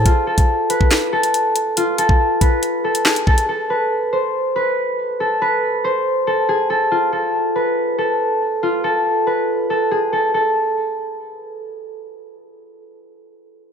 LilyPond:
<<
  \new Staff \with { instrumentName = "Harp" } { \time 4/4 \key a \minor \tempo 4 = 140 f'8 a'4 b'4 a'4. | f'8 a'4 b'4 a'8 gis'8 a'8 | a'8 b'4 c''4 b'4. | a'8 b'4 c''4 a'8 gis'8 a'8 |
f'8 a'4 b'4 a'4. | f'8 a'4 b'4 a'8 gis'8 a'8 | a'2. r4 | r1 | }
  \new DrumStaff \with { instrumentName = "Drums" } \drummode { \time 4/4 <hh bd>8. <hh bd>16 r8 hh16 bd16 <hc hh sn>8. hh16 hh8 hh8 | hh8 hh16 bd16 r8 <hh bd>8 hh8. hh16 <hc sn>16 hh16 bd16 hh16 | r4 r4 r4 r4 | r4 r4 r4 r4 |
r4 r4 r4 r4 | r4 r4 r4 r4 | r4 r4 r4 r4 | r4 r4 r4 r4 | }
>>